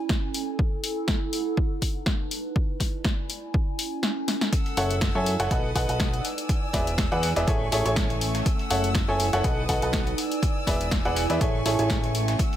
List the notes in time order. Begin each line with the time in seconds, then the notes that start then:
Already playing: C#4 G#5
0.05 A4
0.09 kick, snare
0.34 open hi-hat
0.59 E4, kick
0.84 open hi-hat
1.04 F#5, snare
1.08 kick
1.33 open hi-hat
1.57 D#4, kick
1.82 kick, open hi-hat
1.91 B4 A5
2.06 kick, snare
2.31 E4, open hi-hat
2.56 kick
2.77 D5, kick, snare, open hi-hat
2.87 G#5
3.05 kick, snare
3.30 open hi-hat
3.54 C#4, kick
3.79 open hi-hat
3.97 A4
4.03 snare
4.28 snare, open hi-hat
4.41 snare
4.53 E4 A4 F#5 E6, kick, closed hi-hat
4.66 closed hi-hat
4.77 F#1 A4 C#5 E5 F#5, closed hi-hat, open hi-hat
4.91 F#5, closed hi-hat
5.01 kick, snare, closed hi-hat
5.15 F#2 A4 C#5 E5 G#5
5.26 closed hi-hat, open hi-hat
5.40 F#1 A4 C#5 E5 F#5, snare, closed hi-hat
5.51 B1 D#4 A4 B4 D#5 F#5 A5 D#6, kick, closed hi-hat
5.75 B1 A4 B4 D#5 F#5, kick, closed hi-hat, open hi-hat
5.85 B1 B4 D#5
5.89 A4 B4 F#5, closed hi-hat
6.00 kick, snare, closed hi-hat
6.13 closed hi-hat
6.24 E4 D5 G#5 E6, closed hi-hat, open hi-hat
6.38 closed hi-hat
6.49 kick, closed hi-hat
6.73 E1 G#4 B4 D5 E5, kick, snare, closed hi-hat, open hi-hat
6.80 D5 G#5
6.87 closed hi-hat
6.98 kick, snare, closed hi-hat
7.12 E2 G#4 B4 D5 F#5, closed hi-hat
7.23 snare, closed hi-hat, open hi-hat
7.36 E1 G#4 B4 D5 E5, snare, closed hi-hat
7.48 A1 A3 C#4 G#4 A4 C#5 E5 G#5 C#6, kick, closed hi-hat
7.72 A1 G#4 A4 C#5 E5, closed hi-hat, open hi-hat
7.86 A1 G#4 A4 C#5 E5, closed hi-hat
7.92 A3
7.96 kick, snare, closed hi-hat
8.10 closed hi-hat
8.21 closed hi-hat, open hi-hat
8.35 snare, closed hi-hat
8.46 E4 F#5 E6, kick, closed hi-hat
8.59 closed hi-hat
8.71 F#1 A4 C#5 E5 F#5, closed hi-hat, open hi-hat
8.84 closed hi-hat
8.90 F#5
8.95 kick, snare, closed hi-hat
9.09 F#1 A4 C#5 E5 G#5
9.20 closed hi-hat, open hi-hat
9.33 F#1 A4 C#5 E5 F#5, snare, closed hi-hat
9.44 B1 D#4 A4 B4 D#5 F#5 A5 D#6, kick, closed hi-hat
9.66 B1 A4 B4 D#5 F#5, kick, closed hi-hat, open hi-hat
9.78 A5
9.82 B1 A4 B4 D#5 F#5, closed hi-hat
9.93 kick, snare, closed hi-hat
10.07 closed hi-hat
10.18 E4 D5 G#5 E6, closed hi-hat, open hi-hat
10.32 closed hi-hat
10.43 kick, closed hi-hat
10.67 E1 G#4 B4 D5 E5, kick, snare, closed hi-hat, open hi-hat
10.74 D5 G#5
10.81 closed hi-hat
10.91 kick, snare, closed hi-hat
11.05 E1 G#4 B4 D5 F#5, closed hi-hat
11.16 snare, closed hi-hat, open hi-hat
11.30 E2 G#4 B4 D5 E5, snare, closed hi-hat
11.41 A1 A3 C#4 G#4 A4 C#5 E5 C#6, kick, closed hi-hat
11.66 A1 G#4 A4 C#5 E5, closed hi-hat, open hi-hat
11.79 A1 G#4 A4 C#5 E5, closed hi-hat
11.85 A3
11.90 kick, snare, closed hi-hat
12.04 closed hi-hat
12.15 closed hi-hat, open hi-hat
12.28 snare, closed hi-hat
12.39 E4 F#5 E6, kick, closed hi-hat
12.53 closed hi-hat